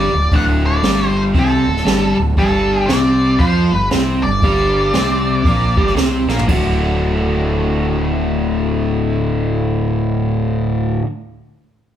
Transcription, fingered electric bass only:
Already playing: G1
0.13 D1
0.31 D1
0.83 G1
1.35 C2
1.67 D1
1.86 G1
2.17 D1
2.37 G1
2.89 C2
3.40 F2
3.72 G1
3.92 C2
4.23 G1
4.42 G1
4.95 C2
5.45 A#1
5.77 G1
5.97 C2
6.28 A#1
6.48 D1

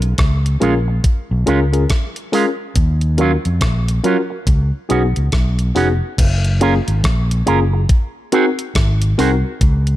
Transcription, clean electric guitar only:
0.61 G#3 C#4 F4
0.88 muted clean electric guitar stroke
1.47 G#3 C#4 F4
2.33 G#3 C#4 F4
3.19 F#3 C#4 F4
4.04 F#3 C#4 F4
4.30 muted clean electric guitar stroke
4.89 B3 C#4 F#4
5.75 B3 C#4 F#4
6.61 C#4 F4 A#4
7.46 C#4 F4 A#4
7.73 muted clean electric guitar stroke
8.33 C4 F#4 G#4
9.18 C4 F#4 G#4

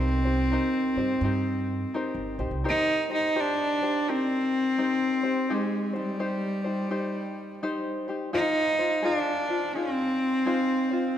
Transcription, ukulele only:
Already playing: D#4 G4 A#4 C5
0.25 D#4 G4 C5
0.52 D#4 G4 A#4 C5
0.97 D#4 G4 C5
1.23 D#4 G4 A#4 C5
1.94 D#4 G4 A#4 C5
2.39 D#4 G4 C5
2.64 D#4 G4 A#4 C5
3.10 D#4 G4 C5
3.35 G4 A#4 C5
3.82 G4 C5
4.08 D#4 G4 A#4 C5
4.78 D#4 G4 A#4 C5
5.23 D#4 G4 C5
5.50 D#4 G4 G#4 C5
5.93 D#4 G4 C5
6.20 D#4 G4 C5
6.64 D#4 G4 C5
6.90 D#4 G4 C5
7.63 D#4 G4 C5
8.08 D#4 G4 C5
8.33 D#4 F4 G#4 C5
8.79 D#4 F4 C5
9.02 F4 G#4 C5
9.49 F4 C5
9.75 D#4 F4 G#4 C5
10.45 D#4 F4 G#4 C5
10.91 D#4 F4 C5

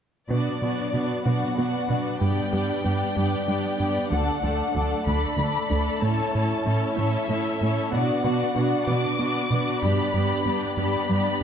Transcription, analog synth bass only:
0.30 B2
0.62 B2
0.94 B2
1.26 B2
1.58 B3
1.90 B2
2.21 G2
2.53 G2
2.85 G2
3.17 G2
3.48 G3
3.80 G2
4.12 D2
4.44 D2
4.76 D2
5.07 D2
5.39 D3
5.71 D2
6.02 A2
6.35 A2
6.67 A2
6.99 A2
7.30 A3
7.61 A2
7.93 B2
8.24 B2
8.56 B2
8.87 B2
9.19 B3
9.50 B2
9.82 G2
10.14 G2
10.46 G2
10.77 G2
11.09 G3

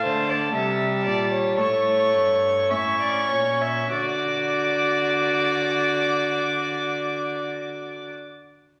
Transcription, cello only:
0.05 D3
0.55 C3
1.06 A#2
1.59 A2
2.14 G2
2.71 A2
3.31 A#2
3.93 D3

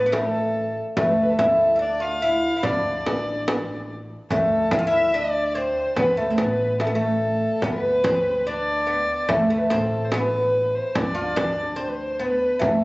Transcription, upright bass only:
Already playing: A1
0.97 D2
2.64 D2
3.06 A1
4.30 D2
5.97 D2
6.38 A1
7.63 D2
9.29 D2
9.71 A1
10.95 D2
12.61 D2

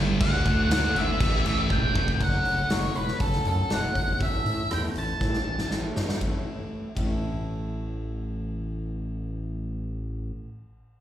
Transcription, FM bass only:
Already playing: G1
0.21 D2
0.46 D2
0.72 D2
0.96 G1
1.21 A1
1.45 A1
1.71 E1
1.96 F1
2.21 F#1
2.46 F#1
2.71 F#1
2.96 E1
3.20 F#1
3.45 F#2
3.70 E1
3.96 G1
4.21 A1
4.45 A2
4.71 E2
4.96 A1
5.21 A2
5.46 A1
5.72 A1
5.97 G2
6.21 A1
6.97 A1

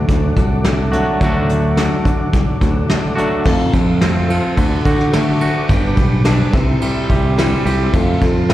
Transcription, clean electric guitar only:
Already playing: D3 F#3 A3 D4 F#4
0.92 D3 F#3 A3 D4 F#4
1.20 D3 F#3 A3 D4 F#4
3.15 D3 F#3 A3 D4 F#4
3.45 F2
4.01 C4
4.30 F3
4.57 D3
4.86 F#4
5.14 A3
5.42 F#4
5.70 G2
6.26 D4
6.54 C3
6.82 G3
7.09 G4
7.38 G3
7.66 G4
7.94 F2
8.49 C4

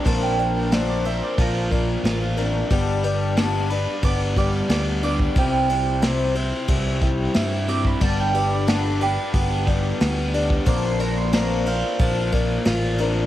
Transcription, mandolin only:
0.06 A5
0.22 G5
0.39 A5
0.56 G5
0.74 E5
0.90 D5
1.06 E5
1.24 D5
1.40 F4 A#4
4.05 D6
4.38 D6
4.71 D6
5.04 D6
5.38 G5
7.69 D6
7.87 B5
8.04 A5
8.20 G5
8.36 E5
8.53 D5
8.69 B4
8.86 A4
9.02 D4 G4
10.69 D6
10.85 C6
11.01 A#5
11.17 C6
11.33 A#5
11.67 F5

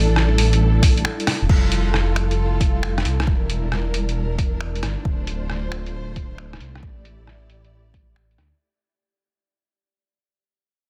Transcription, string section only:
Already playing: G3 D4 E4 A4
1.50 G3 E4 F4 A4
3.27 D4 A#4
5.06 A3 F4 C5
6.83 E4 G4 D5

